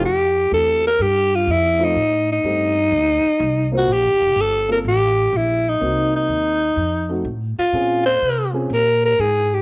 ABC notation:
X:1
M:4/4
L:1/8
Q:"Swing" 1/4=124
K:Cmix
V:1 name="Alto saxophone"
G2 A B G F E _E- | _E E6 _G | G2 A B G2 E _E- | _E E4- E z F- |
F c2 z B B _A G |]
V:2 name="Upright piano"
z2 [A,CEG] z4 [A,C_EF] | z2 [A,C_EG] z4 [B,CFc] | z3 [B,CFA] z4 | [B,C_E_G]3 z2 [A,CEG] z2 |
[C_DF_A] z2 [CDFA] z4 |]
V:3 name="Upright bass" clef=bass
F,,2 E,,2 G,,2 F,,2 | A,,2 G,,2 D,, z C,,2 | (3B,,, G,,, F,,, G,,,2 A,,,2 B,,,2 | C,,2 _E,,2 F,,2 A,, z |
B,,2 C,2 B,,2 _A,,2 |]